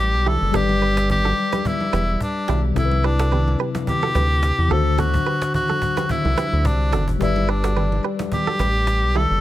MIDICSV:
0, 0, Header, 1, 7, 480
1, 0, Start_track
1, 0, Key_signature, 1, "major"
1, 0, Tempo, 555556
1, 467, Time_signature, 4, 2, 24, 8
1, 8128, End_track
2, 0, Start_track
2, 0, Title_t, "Clean electric guitar"
2, 0, Program_c, 0, 27
2, 228, Note_on_c, 0, 67, 79
2, 236, Note_on_c, 0, 64, 63
2, 309, Note_off_c, 0, 67, 0
2, 314, Note_off_c, 0, 64, 0
2, 468, Note_on_c, 0, 69, 103
2, 475, Note_on_c, 0, 62, 83
2, 549, Note_off_c, 0, 69, 0
2, 554, Note_off_c, 0, 62, 0
2, 709, Note_on_c, 0, 71, 74
2, 716, Note_on_c, 0, 67, 57
2, 790, Note_off_c, 0, 71, 0
2, 795, Note_off_c, 0, 67, 0
2, 1081, Note_on_c, 0, 69, 73
2, 1088, Note_on_c, 0, 66, 57
2, 1147, Note_off_c, 0, 69, 0
2, 1152, Note_off_c, 0, 66, 0
2, 1320, Note_on_c, 0, 71, 80
2, 1327, Note_on_c, 0, 67, 64
2, 1386, Note_off_c, 0, 71, 0
2, 1391, Note_off_c, 0, 67, 0
2, 1668, Note_on_c, 0, 71, 82
2, 1675, Note_on_c, 0, 67, 66
2, 1749, Note_off_c, 0, 71, 0
2, 1754, Note_off_c, 0, 67, 0
2, 2149, Note_on_c, 0, 67, 83
2, 2156, Note_on_c, 0, 64, 65
2, 2230, Note_off_c, 0, 67, 0
2, 2234, Note_off_c, 0, 64, 0
2, 2629, Note_on_c, 0, 71, 82
2, 2636, Note_on_c, 0, 67, 66
2, 2710, Note_off_c, 0, 71, 0
2, 2715, Note_off_c, 0, 67, 0
2, 2761, Note_on_c, 0, 69, 77
2, 2769, Note_on_c, 0, 66, 61
2, 2827, Note_off_c, 0, 69, 0
2, 2832, Note_off_c, 0, 66, 0
2, 2869, Note_on_c, 0, 71, 87
2, 2876, Note_on_c, 0, 67, 72
2, 2950, Note_off_c, 0, 71, 0
2, 2954, Note_off_c, 0, 67, 0
2, 3110, Note_on_c, 0, 71, 82
2, 3117, Note_on_c, 0, 67, 62
2, 3190, Note_off_c, 0, 71, 0
2, 3195, Note_off_c, 0, 67, 0
2, 3482, Note_on_c, 0, 69, 82
2, 3489, Note_on_c, 0, 66, 65
2, 3547, Note_off_c, 0, 69, 0
2, 3552, Note_off_c, 0, 66, 0
2, 3589, Note_on_c, 0, 71, 84
2, 3596, Note_on_c, 0, 67, 64
2, 3670, Note_off_c, 0, 71, 0
2, 3675, Note_off_c, 0, 67, 0
2, 4069, Note_on_c, 0, 69, 78
2, 4076, Note_on_c, 0, 66, 65
2, 4150, Note_off_c, 0, 69, 0
2, 4155, Note_off_c, 0, 66, 0
2, 4309, Note_on_c, 0, 69, 105
2, 4316, Note_on_c, 0, 66, 80
2, 4390, Note_off_c, 0, 69, 0
2, 4394, Note_off_c, 0, 66, 0
2, 4549, Note_on_c, 0, 71, 73
2, 4556, Note_on_c, 0, 67, 60
2, 4630, Note_off_c, 0, 71, 0
2, 4635, Note_off_c, 0, 67, 0
2, 4921, Note_on_c, 0, 69, 73
2, 4928, Note_on_c, 0, 66, 55
2, 4987, Note_off_c, 0, 69, 0
2, 4992, Note_off_c, 0, 66, 0
2, 5161, Note_on_c, 0, 71, 77
2, 5168, Note_on_c, 0, 67, 61
2, 5227, Note_off_c, 0, 71, 0
2, 5232, Note_off_c, 0, 67, 0
2, 5509, Note_on_c, 0, 71, 83
2, 5516, Note_on_c, 0, 67, 63
2, 5590, Note_off_c, 0, 71, 0
2, 5595, Note_off_c, 0, 67, 0
2, 5989, Note_on_c, 0, 69, 84
2, 5996, Note_on_c, 0, 66, 65
2, 6070, Note_off_c, 0, 69, 0
2, 6074, Note_off_c, 0, 66, 0
2, 6469, Note_on_c, 0, 71, 82
2, 6476, Note_on_c, 0, 67, 61
2, 6550, Note_off_c, 0, 71, 0
2, 6555, Note_off_c, 0, 67, 0
2, 6601, Note_on_c, 0, 69, 79
2, 6608, Note_on_c, 0, 66, 64
2, 6667, Note_off_c, 0, 69, 0
2, 6672, Note_off_c, 0, 66, 0
2, 6710, Note_on_c, 0, 71, 88
2, 6717, Note_on_c, 0, 67, 70
2, 6790, Note_off_c, 0, 71, 0
2, 6795, Note_off_c, 0, 67, 0
2, 6951, Note_on_c, 0, 71, 77
2, 6957, Note_on_c, 0, 67, 59
2, 7031, Note_off_c, 0, 71, 0
2, 7035, Note_off_c, 0, 67, 0
2, 7322, Note_on_c, 0, 69, 82
2, 7329, Note_on_c, 0, 66, 64
2, 7387, Note_off_c, 0, 69, 0
2, 7392, Note_off_c, 0, 66, 0
2, 7430, Note_on_c, 0, 71, 81
2, 7437, Note_on_c, 0, 67, 63
2, 7510, Note_off_c, 0, 71, 0
2, 7515, Note_off_c, 0, 67, 0
2, 7910, Note_on_c, 0, 67, 83
2, 7917, Note_on_c, 0, 64, 60
2, 7990, Note_off_c, 0, 67, 0
2, 7995, Note_off_c, 0, 64, 0
2, 8128, End_track
3, 0, Start_track
3, 0, Title_t, "Tine electric piano"
3, 0, Program_c, 1, 4
3, 0, Control_c, 1, 64, 127
3, 0, Note_on_c, 1, 55, 65
3, 0, Note_on_c, 1, 67, 63
3, 0, Note_on_c, 1, 71, 60
3, 0, Note_on_c, 1, 74, 71
3, 421, Note_off_c, 1, 55, 0
3, 428, Note_off_c, 1, 67, 0
3, 436, Note_off_c, 1, 71, 0
3, 443, Note_off_c, 1, 74, 0
3, 444, Note_on_c, 1, 55, 65
3, 459, Note_on_c, 1, 67, 61
3, 473, Note_on_c, 1, 71, 59
3, 488, Note_on_c, 1, 74, 74
3, 2341, Note_off_c, 1, 55, 0
3, 2348, Note_off_c, 1, 67, 0
3, 2356, Note_off_c, 1, 71, 0
3, 2363, Note_off_c, 1, 74, 0
3, 2365, Note_on_c, 1, 48, 67
3, 2380, Note_on_c, 1, 60, 60
3, 2394, Note_on_c, 1, 64, 63
3, 2399, Control_c, 1, 64, 0
3, 2408, Note_on_c, 1, 69, 59
3, 2459, Note_off_c, 1, 69, 0
3, 2464, Note_on_c, 1, 71, 73
3, 2532, Control_c, 1, 64, 127
3, 4022, Note_off_c, 1, 48, 0
3, 4030, Note_off_c, 1, 60, 0
3, 4037, Note_off_c, 1, 64, 0
3, 4045, Note_on_c, 1, 50, 70
3, 4059, Note_on_c, 1, 62, 63
3, 4073, Note_off_c, 1, 71, 0
3, 4073, Note_on_c, 1, 66, 65
3, 4076, Control_c, 1, 64, 0
3, 4088, Note_on_c, 1, 72, 75
3, 4249, Control_c, 1, 64, 127
3, 5941, Note_off_c, 1, 50, 0
3, 5948, Note_off_c, 1, 62, 0
3, 5955, Note_off_c, 1, 66, 0
3, 5963, Note_off_c, 1, 72, 0
3, 6205, Note_on_c, 1, 55, 68
3, 6219, Note_on_c, 1, 67, 62
3, 6234, Note_on_c, 1, 71, 65
3, 6239, Control_c, 1, 64, 0
3, 6248, Note_on_c, 1, 74, 74
3, 6393, Control_c, 1, 64, 127
3, 8101, Note_off_c, 1, 55, 0
3, 8108, Note_off_c, 1, 67, 0
3, 8116, Note_off_c, 1, 71, 0
3, 8123, Note_off_c, 1, 74, 0
3, 8128, End_track
4, 0, Start_track
4, 0, Title_t, "Tenor saxophone"
4, 0, Program_c, 2, 66
4, 0, Note_on_c, 2, 67, 110
4, 239, Note_on_c, 2, 69, 108
4, 252, Note_off_c, 2, 67, 0
4, 479, Note_on_c, 2, 67, 120
4, 492, Note_off_c, 2, 69, 0
4, 953, Note_off_c, 2, 67, 0
4, 959, Note_on_c, 2, 67, 114
4, 1440, Note_on_c, 2, 64, 104
4, 1453, Note_off_c, 2, 67, 0
4, 1913, Note_off_c, 2, 64, 0
4, 1921, Note_on_c, 2, 62, 92
4, 2260, Note_off_c, 2, 62, 0
4, 2399, Note_on_c, 2, 64, 94
4, 2638, Note_on_c, 2, 62, 84
4, 2651, Note_off_c, 2, 64, 0
4, 3120, Note_off_c, 2, 62, 0
4, 3359, Note_on_c, 2, 67, 110
4, 4078, Note_on_c, 2, 69, 106
4, 4091, Note_off_c, 2, 67, 0
4, 4316, Note_on_c, 2, 66, 112
4, 4329, Note_off_c, 2, 69, 0
4, 4792, Note_off_c, 2, 66, 0
4, 4798, Note_on_c, 2, 66, 108
4, 5278, Note_on_c, 2, 64, 102
4, 5291, Note_off_c, 2, 66, 0
4, 5758, Note_on_c, 2, 62, 92
4, 5771, Note_off_c, 2, 64, 0
4, 6125, Note_off_c, 2, 62, 0
4, 6239, Note_on_c, 2, 64, 98
4, 6479, Note_on_c, 2, 62, 87
4, 6492, Note_off_c, 2, 64, 0
4, 6960, Note_off_c, 2, 62, 0
4, 7200, Note_on_c, 2, 67, 110
4, 7920, Note_on_c, 2, 69, 110
4, 7932, Note_off_c, 2, 67, 0
4, 8128, Note_off_c, 2, 69, 0
4, 8128, End_track
5, 0, Start_track
5, 0, Title_t, "Analog synth bass"
5, 0, Program_c, 3, 38
5, 0, Note_on_c, 3, 33, 90
5, 118, Note_on_c, 3, 35, 92
5, 131, Note_off_c, 3, 33, 0
5, 324, Note_off_c, 3, 35, 0
5, 358, Note_on_c, 3, 30, 90
5, 451, Note_off_c, 3, 30, 0
5, 466, Note_on_c, 3, 31, 116
5, 1152, Note_off_c, 3, 31, 0
5, 1666, Note_on_c, 3, 28, 97
5, 1872, Note_off_c, 3, 28, 0
5, 2147, Note_on_c, 3, 35, 95
5, 2352, Note_off_c, 3, 35, 0
5, 2386, Note_on_c, 3, 36, 106
5, 3072, Note_off_c, 3, 36, 0
5, 3585, Note_on_c, 3, 38, 102
5, 3904, Note_off_c, 3, 38, 0
5, 3959, Note_on_c, 3, 40, 89
5, 4051, Note_off_c, 3, 40, 0
5, 4067, Note_on_c, 3, 38, 97
5, 4477, Note_off_c, 3, 38, 0
5, 5398, Note_on_c, 3, 36, 93
5, 5491, Note_off_c, 3, 36, 0
5, 5639, Note_on_c, 3, 38, 89
5, 5746, Note_on_c, 3, 36, 95
5, 5759, Note_off_c, 3, 38, 0
5, 5987, Note_on_c, 3, 30, 89
5, 6000, Note_off_c, 3, 36, 0
5, 6192, Note_off_c, 3, 30, 0
5, 6227, Note_on_c, 3, 31, 105
5, 6912, Note_off_c, 3, 31, 0
5, 7425, Note_on_c, 3, 33, 91
5, 7799, Note_on_c, 3, 35, 88
5, 7812, Note_off_c, 3, 33, 0
5, 8004, Note_off_c, 3, 35, 0
5, 8039, Note_on_c, 3, 30, 91
5, 8128, Note_off_c, 3, 30, 0
5, 8128, End_track
6, 0, Start_track
6, 0, Title_t, "Cajon"
6, 232, Note_on_c, 9, 38, 30
6, 319, Note_off_c, 9, 38, 0
6, 359, Note_on_c, 9, 38, 35
6, 445, Note_off_c, 9, 38, 0
6, 466, Note_on_c, 9, 36, 118
6, 552, Note_off_c, 9, 36, 0
6, 839, Note_on_c, 9, 38, 116
6, 926, Note_off_c, 9, 38, 0
6, 948, Note_on_c, 9, 36, 94
6, 1034, Note_off_c, 9, 36, 0
6, 1191, Note_on_c, 9, 38, 30
6, 1277, Note_off_c, 9, 38, 0
6, 1317, Note_on_c, 9, 38, 94
6, 1403, Note_off_c, 9, 38, 0
6, 1425, Note_on_c, 9, 36, 93
6, 1511, Note_off_c, 9, 36, 0
6, 1669, Note_on_c, 9, 38, 98
6, 1756, Note_off_c, 9, 38, 0
6, 1804, Note_on_c, 9, 38, 32
6, 1891, Note_off_c, 9, 38, 0
6, 1906, Note_on_c, 9, 36, 100
6, 1992, Note_off_c, 9, 36, 0
6, 2143, Note_on_c, 9, 38, 95
6, 2229, Note_off_c, 9, 38, 0
6, 2280, Note_on_c, 9, 38, 34
6, 2366, Note_off_c, 9, 38, 0
6, 2387, Note_on_c, 9, 36, 121
6, 2473, Note_off_c, 9, 36, 0
6, 2631, Note_on_c, 9, 38, 32
6, 2718, Note_off_c, 9, 38, 0
6, 2760, Note_on_c, 9, 38, 113
6, 2846, Note_off_c, 9, 38, 0
6, 3001, Note_on_c, 9, 38, 30
6, 3088, Note_off_c, 9, 38, 0
6, 3112, Note_on_c, 9, 38, 29
6, 3198, Note_off_c, 9, 38, 0
6, 3238, Note_on_c, 9, 38, 95
6, 3324, Note_off_c, 9, 38, 0
6, 3346, Note_on_c, 9, 36, 93
6, 3432, Note_off_c, 9, 36, 0
6, 3479, Note_on_c, 9, 38, 34
6, 3566, Note_off_c, 9, 38, 0
6, 3585, Note_on_c, 9, 36, 104
6, 3589, Note_on_c, 9, 38, 100
6, 3672, Note_off_c, 9, 36, 0
6, 3676, Note_off_c, 9, 38, 0
6, 3825, Note_on_c, 9, 38, 104
6, 3911, Note_off_c, 9, 38, 0
6, 3962, Note_on_c, 9, 38, 28
6, 4049, Note_off_c, 9, 38, 0
6, 4073, Note_on_c, 9, 38, 29
6, 4159, Note_off_c, 9, 38, 0
6, 4200, Note_on_c, 9, 38, 34
6, 4286, Note_off_c, 9, 38, 0
6, 4307, Note_on_c, 9, 36, 119
6, 4393, Note_off_c, 9, 36, 0
6, 4442, Note_on_c, 9, 36, 100
6, 4528, Note_off_c, 9, 36, 0
6, 4680, Note_on_c, 9, 38, 113
6, 4766, Note_off_c, 9, 38, 0
6, 4788, Note_on_c, 9, 36, 91
6, 4874, Note_off_c, 9, 36, 0
6, 5026, Note_on_c, 9, 36, 99
6, 5112, Note_off_c, 9, 36, 0
6, 5157, Note_on_c, 9, 38, 88
6, 5243, Note_off_c, 9, 38, 0
6, 5265, Note_on_c, 9, 36, 96
6, 5352, Note_off_c, 9, 36, 0
6, 5399, Note_on_c, 9, 38, 33
6, 5485, Note_off_c, 9, 38, 0
6, 5509, Note_on_c, 9, 38, 102
6, 5596, Note_off_c, 9, 38, 0
6, 5745, Note_on_c, 9, 38, 106
6, 5746, Note_on_c, 9, 36, 106
6, 5831, Note_off_c, 9, 38, 0
6, 5832, Note_off_c, 9, 36, 0
6, 5883, Note_on_c, 9, 38, 30
6, 5969, Note_off_c, 9, 38, 0
6, 5983, Note_on_c, 9, 38, 96
6, 5987, Note_on_c, 9, 36, 72
6, 6069, Note_off_c, 9, 38, 0
6, 6073, Note_off_c, 9, 36, 0
6, 6114, Note_on_c, 9, 36, 84
6, 6200, Note_off_c, 9, 36, 0
6, 6227, Note_on_c, 9, 36, 118
6, 6313, Note_off_c, 9, 36, 0
6, 6472, Note_on_c, 9, 38, 32
6, 6558, Note_off_c, 9, 38, 0
6, 6600, Note_on_c, 9, 38, 115
6, 6687, Note_off_c, 9, 38, 0
6, 6842, Note_on_c, 9, 38, 31
6, 6928, Note_off_c, 9, 38, 0
6, 6952, Note_on_c, 9, 38, 29
6, 7038, Note_off_c, 9, 38, 0
6, 7078, Note_on_c, 9, 38, 91
6, 7164, Note_off_c, 9, 38, 0
6, 7185, Note_on_c, 9, 36, 91
6, 7272, Note_off_c, 9, 36, 0
6, 7425, Note_on_c, 9, 36, 106
6, 7429, Note_on_c, 9, 38, 99
6, 7512, Note_off_c, 9, 36, 0
6, 7516, Note_off_c, 9, 38, 0
6, 7664, Note_on_c, 9, 38, 101
6, 7751, Note_off_c, 9, 38, 0
6, 8039, Note_on_c, 9, 38, 33
6, 8126, Note_off_c, 9, 38, 0
6, 8128, End_track
7, 0, Start_track
7, 0, Title_t, "Drums"
7, 232, Note_on_c, 9, 63, 55
7, 232, Note_on_c, 9, 64, 74
7, 318, Note_off_c, 9, 63, 0
7, 318, Note_off_c, 9, 64, 0
7, 464, Note_on_c, 9, 64, 83
7, 551, Note_off_c, 9, 64, 0
7, 597, Note_on_c, 9, 63, 74
7, 683, Note_off_c, 9, 63, 0
7, 949, Note_on_c, 9, 64, 76
7, 1036, Note_off_c, 9, 64, 0
7, 1084, Note_on_c, 9, 63, 76
7, 1170, Note_off_c, 9, 63, 0
7, 1321, Note_on_c, 9, 63, 82
7, 1408, Note_off_c, 9, 63, 0
7, 1430, Note_on_c, 9, 64, 77
7, 1517, Note_off_c, 9, 64, 0
7, 1559, Note_on_c, 9, 63, 82
7, 1645, Note_off_c, 9, 63, 0
7, 1667, Note_on_c, 9, 63, 85
7, 1753, Note_off_c, 9, 63, 0
7, 2152, Note_on_c, 9, 63, 53
7, 2152, Note_on_c, 9, 64, 77
7, 2238, Note_off_c, 9, 63, 0
7, 2238, Note_off_c, 9, 64, 0
7, 2385, Note_on_c, 9, 64, 87
7, 2471, Note_off_c, 9, 64, 0
7, 2518, Note_on_c, 9, 63, 75
7, 2604, Note_off_c, 9, 63, 0
7, 2870, Note_on_c, 9, 64, 73
7, 2957, Note_off_c, 9, 64, 0
7, 3004, Note_on_c, 9, 63, 74
7, 3091, Note_off_c, 9, 63, 0
7, 3242, Note_on_c, 9, 63, 86
7, 3328, Note_off_c, 9, 63, 0
7, 3352, Note_on_c, 9, 64, 80
7, 3438, Note_off_c, 9, 64, 0
7, 3479, Note_on_c, 9, 63, 82
7, 3566, Note_off_c, 9, 63, 0
7, 3587, Note_on_c, 9, 63, 85
7, 3674, Note_off_c, 9, 63, 0
7, 4072, Note_on_c, 9, 63, 55
7, 4072, Note_on_c, 9, 64, 76
7, 4158, Note_off_c, 9, 63, 0
7, 4158, Note_off_c, 9, 64, 0
7, 4305, Note_on_c, 9, 64, 84
7, 4391, Note_off_c, 9, 64, 0
7, 4437, Note_on_c, 9, 63, 76
7, 4524, Note_off_c, 9, 63, 0
7, 4791, Note_on_c, 9, 64, 77
7, 4877, Note_off_c, 9, 64, 0
7, 4924, Note_on_c, 9, 63, 72
7, 5011, Note_off_c, 9, 63, 0
7, 5161, Note_on_c, 9, 63, 84
7, 5248, Note_off_c, 9, 63, 0
7, 5272, Note_on_c, 9, 64, 80
7, 5358, Note_off_c, 9, 64, 0
7, 5400, Note_on_c, 9, 63, 82
7, 5486, Note_off_c, 9, 63, 0
7, 5508, Note_on_c, 9, 63, 86
7, 5594, Note_off_c, 9, 63, 0
7, 5992, Note_on_c, 9, 63, 54
7, 5992, Note_on_c, 9, 64, 75
7, 6079, Note_off_c, 9, 63, 0
7, 6079, Note_off_c, 9, 64, 0
7, 6225, Note_on_c, 9, 64, 82
7, 6312, Note_off_c, 9, 64, 0
7, 6359, Note_on_c, 9, 63, 78
7, 6445, Note_off_c, 9, 63, 0
7, 6711, Note_on_c, 9, 64, 74
7, 6797, Note_off_c, 9, 64, 0
7, 6845, Note_on_c, 9, 63, 72
7, 6931, Note_off_c, 9, 63, 0
7, 7082, Note_on_c, 9, 63, 85
7, 7169, Note_off_c, 9, 63, 0
7, 7192, Note_on_c, 9, 64, 74
7, 7278, Note_off_c, 9, 64, 0
7, 7320, Note_on_c, 9, 63, 77
7, 7407, Note_off_c, 9, 63, 0
7, 7428, Note_on_c, 9, 63, 84
7, 7514, Note_off_c, 9, 63, 0
7, 7912, Note_on_c, 9, 63, 56
7, 7912, Note_on_c, 9, 64, 77
7, 7999, Note_off_c, 9, 63, 0
7, 7999, Note_off_c, 9, 64, 0
7, 8128, End_track
0, 0, End_of_file